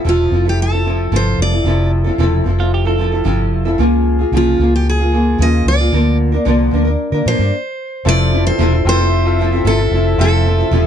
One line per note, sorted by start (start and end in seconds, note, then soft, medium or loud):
0.04 0.27 E1 medium
0.04 0.32 F2 medium
0.04 0.32 C3 medium
0.04 0.30 F3 medium
0.04 0.31 C4 medium
0.04 0.32 E4 medium
0.04 0.33 A4 medium
0.09 0.48 F4 medium
0.31 1.08 F1 medium
0.31 0.45 F3 medium
0.31 0.46 C4 medium
0.31 0.45 E4 medium
0.31 0.44 A4 medium
0.45 0.74 F3 soft
0.45 0.73 C4 soft
0.45 0.71 E4 soft
0.45 0.60 G4 medium
0.45 0.70 A4 soft
0.62 1.16 A4 medium
0.72 0.83 F3 soft
0.72 0.84 C4 soft
0.72 0.85 E4 soft
0.72 0.85 A4 soft
0.85 1.11 F3 medium
0.85 1.12 C4 medium
0.85 1.12 E4 medium
0.85 1.13 A4 medium
1.12 1.34 G1 medium
1.12 1.52 F2 medium
1.12 1.52 C3 medium
1.12 1.52 F3 medium
1.12 1.53 C4 medium
1.12 1.52 E4 medium
1.12 1.50 A4 medium
1.16 1.39 C5 medium
1.38 1.61 F1 medium
1.38 1.90 D5 medium
1.52 1.65 F3 soft
1.52 1.66 C4 soft
1.52 1.66 E4 soft
1.52 1.66 A4 soft
1.64 2.09 F1 medium
1.64 2.06 F2 medium
1.64 2.06 C3 medium
1.64 2.06 F3 medium
1.64 2.06 C4 medium
1.64 2.05 E4 medium
1.64 2.03 A4 medium
2.04 2.18 F3 soft
2.04 2.19 C4 soft
2.04 2.19 E4 medium
2.04 2.19 A4 medium
2.18 2.41 E1 medium
2.18 2.46 F2 medium
2.18 2.46 C3 medium
2.18 2.43 F3 medium
2.18 2.44 C4 medium
2.18 2.45 E4 medium
2.18 2.46 A4 medium
2.44 3.22 F1 medium
2.44 2.58 F3 medium
2.44 2.59 C4 medium
2.44 2.58 E4 medium
2.44 2.57 A4 medium
2.58 2.87 F3 soft
2.58 2.86 C4 soft
2.58 2.85 E4 medium
2.58 2.72 F4 medium
2.58 2.84 A4 medium
2.74 2.86 G4 medium
2.85 2.97 F3 soft
2.85 2.98 C4 medium
2.85 2.99 E4 medium
2.85 2.99 A4 medium
2.85 3.63 A4 medium
2.98 3.12 F3 medium
2.98 3.13 C4 medium
2.98 3.12 E4 medium
2.98 3.11 A4 medium
3.12 3.24 F3 soft
3.12 3.25 C4 soft
3.12 3.25 E4 soft
3.12 3.25 A4 medium
3.24 3.52 G1 medium
3.24 3.65 F2 medium
3.24 3.66 C3 medium
3.24 3.66 F3 medium
3.24 3.65 C4 medium
3.24 3.65 E4 medium
3.24 3.64 A4 medium
3.52 3.74 F1 medium
3.65 3.78 F3 soft
3.65 3.79 C4 soft
3.65 3.79 E4 medium
3.65 3.79 A4 medium
3.78 4.23 C#2 medium
3.78 4.19 C#3 medium
3.78 4.19 F3 medium
3.78 4.20 A#3 medium
3.78 4.19 F4 medium
3.78 4.18 G#4 medium
4.19 4.32 A#3 soft
4.19 4.33 F4 soft
4.19 4.33 G#4 soft
4.32 4.54 C2 medium
4.32 4.59 C#3 medium
4.32 4.57 F3 medium
4.32 4.59 A#3 medium
4.32 4.60 F4 medium
4.32 4.60 G#4 medium
4.37 4.75 F4 medium
4.58 5.35 C#2 medium
4.58 4.99 F3 medium
4.58 5.00 A#3 medium
4.58 4.99 F4 medium
4.58 4.98 G#4 medium
4.76 4.88 G4 medium
4.89 5.43 G#4 medium
4.99 5.12 A#3 soft
4.99 5.13 F4 soft
4.99 5.13 G#4 medium
5.12 5.38 F3 medium
5.12 5.39 A#3 medium
5.12 5.39 F4 medium
5.12 5.40 G#4 medium
5.38 5.61 D#2 medium
5.38 5.79 C#3 medium
5.38 5.79 F3 medium
5.38 5.80 A#3 medium
5.38 5.79 F4 medium
5.38 5.77 G#4 medium
5.38 5.68 D#5 medium
5.65 5.88 C#2 medium
5.65 6.17 D5 medium
5.79 5.92 A#3 soft
5.79 5.93 F4 soft
5.79 5.92 G#4 medium
5.92 6.36 D2 loud
5.92 6.33 D3 medium
5.92 6.33 F3 medium
5.92 6.33 A#3 medium
5.92 6.33 D4 medium
5.92 6.31 A#4 medium
6.32 6.45 A#3 medium
6.32 6.45 D4 medium
6.32 6.46 A#4 medium
6.45 6.68 C2 medium
6.45 6.72 D3 medium
6.45 6.70 F3 medium
6.45 6.71 A#3 medium
6.45 6.72 D4 medium
6.45 6.73 A#4 medium
6.71 6.95 D2 medium
6.71 6.85 F3 medium
6.71 6.86 A#3 medium
6.71 6.86 D4 medium
6.71 6.83 A#4 medium
6.85 7.14 A#3 soft
6.85 7.12 D4 medium
6.85 7.11 A#4 medium
7.12 7.23 D3 loud
7.12 7.26 A#3 soft
7.12 7.27 D4 medium
7.12 7.26 A#4 medium
7.26 7.37 A#2 medium
7.26 7.39 F3 medium
7.26 7.40 A#3 medium
7.26 7.40 D4 medium
7.26 7.38 A#4 medium
7.26 8.08 C5 medium
7.39 7.50 G2 medium
7.39 7.54 A#3 soft
7.39 7.53 D4 soft
7.39 7.53 A#4 medium
8.05 8.49 F1 loud
8.05 8.32 F2 medium
8.05 8.32 C3 medium
8.05 10.87 C3 medium
8.05 8.30 F3 medium
8.05 10.87 F3 medium
8.05 10.87 A3 medium
8.05 8.70 C4 medium
8.05 8.32 C4 medium
8.05 8.33 E4 medium
8.05 8.70 F4 medium
8.05 8.71 A4 medium
8.05 8.33 A4 medium
8.05 8.46 D5 loud
8.05 10.87 E5 medium
8.05 8.71 E5 medium
8.31 8.45 F3 medium
8.31 8.46 C4 medium
8.31 8.46 E4 medium
8.31 8.44 A4 medium
8.45 8.57 F3 soft
8.45 8.58 C4 soft
8.45 8.59 E4 soft
8.45 8.59 A4 medium
8.45 8.87 C5 medium
8.58 8.81 E1 medium
8.58 8.72 F2 medium
8.58 8.72 C3 medium
8.58 8.72 F3 medium
8.58 8.73 C4 medium
8.58 8.72 E4 medium
8.58 8.71 A4 medium
8.72 8.84 F3 soft
8.72 8.86 C4 soft
8.72 8.86 E4 soft
8.72 8.85 A4 soft
8.85 9.61 F1 medium
8.85 8.99 F3 medium
8.85 9.18 C4 medium
8.85 9.00 C4 medium
8.85 8.99 E4 medium
8.85 9.18 F4 medium
8.85 9.18 A4 medium
8.85 8.98 A4 medium
8.85 9.63 C5 loud
8.85 9.19 G5 medium
8.99 9.37 F3 soft
8.99 9.38 C4 soft
8.99 9.40 E4 medium
8.99 9.39 A4 medium
9.25 10.01 C4 medium
9.25 10.01 F4 medium
9.25 10.01 A4 medium
9.25 10.01 E5 medium
9.39 9.52 F3 medium
9.39 9.53 C4 medium
9.39 9.52 E4 medium
9.39 9.51 A4 medium
9.52 9.64 F3 soft
9.52 9.65 C4 soft
9.52 9.65 E4 medium
9.52 9.65 A4 medium
9.65 9.87 G1 medium
9.65 9.78 F2 medium
9.65 9.79 C3 medium
9.65 9.79 F3 medium
9.65 9.79 C4 medium
9.65 9.79 E4 medium
9.65 9.78 A4 medium
9.65 10.20 A4 medium
9.79 9.91 F3 soft
9.79 9.92 C4 soft
9.79 9.93 E4 medium
9.79 9.92 A4 soft
9.91 10.13 F1 medium
9.91 10.18 F3 medium
9.91 10.19 C4 medium
9.91 10.19 E4 medium
9.95 10.20 A4 medium
10.18 10.62 F1 loud
10.18 10.45 F2 medium
10.18 10.45 C3 medium
10.18 10.44 F3 medium
10.18 10.83 C4 medium
10.18 10.46 C4 medium
10.18 10.46 E4 medium
10.18 10.83 F4 medium
10.18 10.84 A4 medium
10.18 10.46 A4 medium
10.18 10.87 A4 medium
10.18 10.84 E5 medium
10.46 10.59 F3 medium
10.46 10.59 C4 medium
10.46 10.59 E4 medium
10.46 10.57 A4 medium
10.58 10.71 F3 soft
10.58 10.72 C4 medium
10.58 10.72 E4 medium
10.58 10.72 A4 medium
10.71 10.87 E1 medium
10.71 10.87 F2 medium
10.71 10.87 C3 medium
10.71 10.87 F3 medium
10.71 10.87 C4 medium
10.71 10.87 E4 medium
10.71 10.87 A4 medium